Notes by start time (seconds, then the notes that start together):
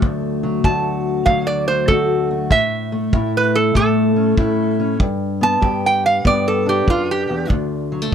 Already playing: F#3 A3
0.02 D2, kick
0.43 F#3
0.64 D2 F#4 A5, kick
1.26 D2 F#3 F5, kick
1.47 D5
1.68 A3 C5
1.88 D2 F#4 A4, kick
2.31 A3
2.51 A2 E5, kick
2.92 A3
3.13 A2 E4, kick
3.37 B4
3.55 A4
3.75 A2 A3 A4, kick
4.16 C#4
4.37 A2 E4, kick
4.80 C#4
4.99 G2, kick
5.41 B3 A5
5.61 G2 G4, kick
5.86 G5
6.06 F5
6.24 G2 B3 D5, kick
6.48 A4
6.66 D4 G4
6.86 F#2, kick
6.90 F4
7.11 G4
7.29 E2
7.50 D2, kick
7.92 F#3
8.02 A3
8.11 D2